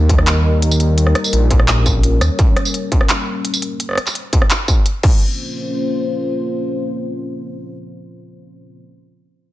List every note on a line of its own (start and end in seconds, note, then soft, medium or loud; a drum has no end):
0.00 1.14 D#2 loud
0.00 3.76 G3 medium
0.00 3.76 A#3 medium
0.00 1.66 D#4 medium
0.00 3.76 A#4 medium
0.09 kick medium
0.09 closed hi-hat medium
0.19 cross-stick soft
0.27 clap loud
0.27 closed hi-hat medium
0.62 closed hi-hat medium
0.71 tambourine medium
0.80 closed hi-hat medium
0.98 closed hi-hat medium
1.07 cross-stick soft
1.15 cross-stick medium
1.15 closed hi-hat medium
1.24 tambourine medium
1.33 2.20 A#1 loud
1.33 closed hi-hat medium
1.51 kick medium
1.51 closed hi-hat medium
1.60 cross-stick soft
1.68 3.78 C#4 medium
1.68 clap loud
1.68 closed hi-hat medium
1.68 tambourine medium
1.86 kick medium
1.86 tambourine medium
2.03 closed hi-hat medium
2.21 2.29 D#2 loud
2.21 cross-stick medium
2.21 closed hi-hat medium
2.21 tambourine medium
2.39 kick loud
2.39 closed hi-hat medium
2.56 cross-stick medium
2.56 closed hi-hat medium
2.65 tambourine medium
2.74 closed hi-hat medium
2.92 kick medium
2.92 closed hi-hat medium
3.01 cross-stick medium
3.09 clap loud
3.09 closed hi-hat medium
3.45 closed hi-hat medium
3.54 tambourine medium
3.62 closed hi-hat medium
3.80 closed hi-hat medium
3.89 cross-stick soft
3.91 cross-stick soft
3.93 cross-stick soft
3.95 cross-stick soft
3.98 cross-stick medium
3.98 closed hi-hat medium
4.07 clap soft
4.07 tambourine medium
4.15 closed hi-hat medium
4.33 kick medium
4.33 closed hi-hat medium
4.42 cross-stick medium
4.50 clap loud
4.50 closed hi-hat medium
4.50 tambourine medium
4.68 kick medium
4.68 tambourine medium
4.86 closed hi-hat medium
5.03 8.80 A#3 medium
5.03 8.80 C#4 medium
5.03 8.80 F4 medium
5.03 8.80 C5 medium
5.03 kick loud
5.03 crash medium